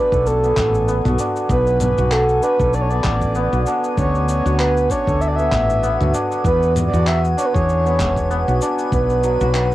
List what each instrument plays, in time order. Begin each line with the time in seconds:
Already playing: santur B3 D4 F#4, soft synth lead B4, synth texture G#5
0.12 fretless electric bass B1, santur A4, kick, shaker
0.26 soft synth lead A4, shaker
0.44 santur B3, shaker
0.57 fretless electric bass A1, kick, clap, mid tom, shaker
0.74 shaker
0.88 santur B3, shaker
1.05 fretless electric bass B1, santur F#4, mid tom, shaker
1.19 santur D4, shaker
1.36 shaker
1.50 fretless electric bass B1, santur B3, soft synth lead B4, kick, shaker
1.67 shaker
1.80 soft synth lead B4, mid tom, shaker
1.98 fretless electric bass B1, santur F#4, shaker
2.12 soft synth lead A4, clap, shaker
2.29 shaker
2.43 santur D4, soft synth lead B4, shaker
2.60 fretless electric bass B1, santur A4, kick, shaker
2.73 soft synth lead D5, shaker
2.81 soft synth lead C#5
2.89 santur B3, soft synth lead D5, shaker
3.04 fretless electric bass A1, kick, clap, shaker
3.21 kick, shaker
3.35 santur B3, shaker
3.53 fretless electric bass B1, santur F#4, shaker
3.66 santur D4, shaker
3.84 shaker
3.97 fretless electric bass D2, santur B3, soft synth lead C#5, kick, shaker
4.15 shaker
4.28 soft synth lead C#5, shaker
4.46 fretless electric bass D2, santur F#4, shaker
4.59 soft synth lead B4, clap, shaker
4.77 shaker
4.90 santur D4, soft synth lead C#5, kick, shaker
5.07 fretless electric bass D2, santur A4, kick, shaker
5.21 soft synth lead E5, shaker
5.28 soft synth lead D5
5.36 santur B3, soft synth lead E5, shaker
5.52 fretless electric bass A1, kick, clap, mid tom, shaker
5.69 shaker
5.83 santur B3, shaker
6.00 fretless electric bass D2, santur F#4, mid tom, shaker
6.14 santur D4, shaker
6.31 shaker
6.44 fretless electric bass E2, santur B3, soft synth lead B4, kick, shaker
6.62 shaker
6.76 mid tom, shaker
6.87 soft synth lead D5
6.93 fretless electric bass E2, santur F#4, shaker
7.07 soft synth lead E5, clap, shaker
7.25 shaker
7.37 santur D4, soft synth lead C#5, shaker
7.46 soft synth lead B4
7.54 fretless electric bass E2, santur G#4, soft synth lead C#5, kick, shaker
7.69 shaker
7.86 santur B3, shaker
7.99 fretless electric bass E1, kick, clap, shaker
8.16 kick, shaker
8.31 santur B3, shaker
8.48 fretless electric bass B1, santur F#4, shaker
8.61 santur D4, shaker
8.79 shaker
8.92 fretless electric bass B1, santur B3, soft synth lead B4, kick, shaker
9.10 shaker
9.23 santur F#3, shaker
9.41 fretless electric bass B1, santur F#4, shaker
9.55 clap, shaker
9.72 shaker